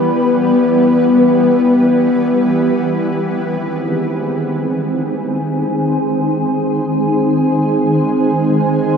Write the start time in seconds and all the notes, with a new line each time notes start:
Already playing: E3 G3 B3 G4 B4
2.93 D#3
3.11 C4
3.28 G#4
3.48 G#3
4.92 C5